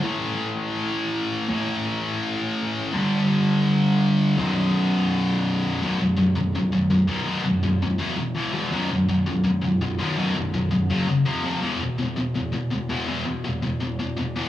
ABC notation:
X:1
M:4/4
L:1/8
Q:1/4=166
K:Bm
V:1 name="Distorted electric guitar" clef=bass
[A,,E,A,]8 | [A,,E,A,]8 | [G,,D,G,]8 | [B,,,F,,B,,]8 |
[B,,,F,,B,,] [B,,,F,,] [B,,,F,,] [B,,,F,,] [B,,,F,,] [B,,,F,,] [B,,,F,,] [B,,,F,,B,,] | [B,,,F,,B,,] [B,,,F,,] [B,,,F,,] [B,,,F,,] [E,,B,,E,] [E,,B,,] [E,,B,,E,] [E,,B,,E,] | [B,,,F,,B,,] [B,,,F,,] [B,,,F,,] [B,,,F,,] [B,,,F,,] [B,,,F,,] [B,,,F,,] [B,,,F,,B,,] | [B,,,F,,B,,] [B,,,F,,] [B,,,F,,] [B,,,F,,] [F,,C,F,] [F,,C,] [=F,,=C,=F,] [F,,C,F,] |
[E,,B,,E,] [E,,B,,] [E,,B,,] [E,,B,,] [E,,B,,] [E,,B,,] [E,,B,,] [E,,B,,E,] | [E,,B,,E,] [E,,B,,] [E,,B,,] [E,,B,,] [E,,B,,] [E,,B,,] [E,,B,,] [E,,B,,E,] |]